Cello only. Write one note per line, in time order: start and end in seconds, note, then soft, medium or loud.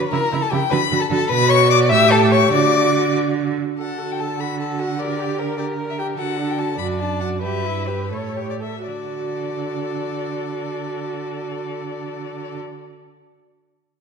0.12 0.20 C#3 medium
0.32 0.40 C#3 medium
0.52 0.60 C#3 medium
0.72 0.79 D3 medium
0.91 0.99 D3 medium
1.11 1.18 D3 medium
1.31 1.93 B2 medium
1.91 2.52 A2 medium
2.53 3.56 D3 medium
3.79 6.14 D3 soft
6.18 6.78 D3 soft
6.79 7.45 F#2 soft
7.44 8.13 G2 soft
8.12 8.61 A2 soft
8.87 12.57 D3 soft